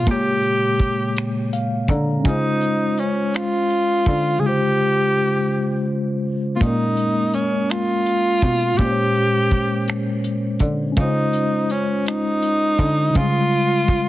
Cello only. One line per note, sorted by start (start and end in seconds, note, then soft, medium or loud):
0.07 1.89 A#2 medium
1.89 2.22 D3 medium
2.26 4.03 C#3 medium
4.07 4.39 D3 medium
6.62 8.39 A#2 medium
8.43 8.76 B2 medium
8.80 10.60 A#2 medium
10.61 10.94 D3 medium
10.98 12.75 C#3 loud
12.79 13.12 D3 medium
13.16 14.09 C#3 medium